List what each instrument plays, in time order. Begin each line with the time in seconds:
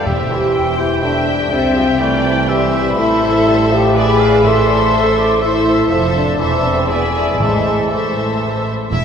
0.05 double bass section E1, cello section E2, timpani E2, bassoon G3, viola section G4, clarinet C5, violin section C5 E5, oboe E5, flute section G5
0.30 bassoon E3, viola section E4, french horn section G4
0.53 viola section E4, violin section C5 G5, oboe E5, flute section G5
0.79 french horn section E4, viola section G4, oboe G5
1.02 bassoon A3, french horn section D4, viola section G4, clarinet C5, violin section E5 G5, flute section E5
1.28 bassoon G3
1.51 double bass section C2, cello section C3, bassoon G3, french horn section C4, viola section A4, violin section E5, flute section E5, clarinet E5, oboe G5
1.76 bassoon F3, viola section G4
2.00 bassoon E3, french horn section A3, viola section F4, clarinet D5, violin section D5 G5, oboe G5, flute section G5
2.25 viola section E4, clarinet C5
2.48 bassoon E3, french horn section G3, viola section G4, clarinet B4, violin section C5 E5, oboe E5, flute section G5
2.74 flute section B5
2.96 double bass section A1, cello section A2, bassoon A3, french horn section E4, viola section A4, clarinet A4, violin section C5 E5, oboe E5
3.23 clarinet C5
3.47 bassoon G3, clarinet E5, flute section A5
3.71 bassoon F3, french horn section G4
3.95 bassoon E3, french horn section G#4, viola section B4, violin section D5 E5, oboe D5, flute section B5
4.20 oboe F5
4.43 timpani A2, bassoon E3, viola section A4, french horn section A4, violin section C5 E5, clarinet E5, oboe E5, flute section C6
4.67 clarinet D5
4.91 bassoon A3, clarinet C5, oboe E5
5.18 oboe D5
5.41 bassoon A3, french horn section E4, viola section A4, clarinet C5, violin section C5 E5, oboe E5, flute section C6
5.90 double bass section F1, cello section F2, bassoon F3, viola section A4, clarinet C5, violin section C5 E5, oboe E5, flute section A5
6.16 french horn section D4
6.39 double bass section E1, cello section E2, bassoon E3, viola section A4, violin section C5 E5, clarinet C5, oboe E5, flute section A5
6.64 french horn section C4
6.89 bassoon E3, french horn section B3, viola section G#4, violin section D5 E5, clarinet D5, oboe E5, flute section G#5
7.15 french horn section A3
7.29 french horn section G#3
7.39 double bass section A1, cello section A2, timpani A2, bassoon E3, french horn section G#3, viola section A4, violin section C5 E5, clarinet C5, oboe E5, flute section A5
7.90 bassoon E3, french horn section A3, viola section A4, violin section C5 E5, clarinet C5, oboe E5, flute section A5
8.91 double bass section E1, cello section E2, violin section E4 E5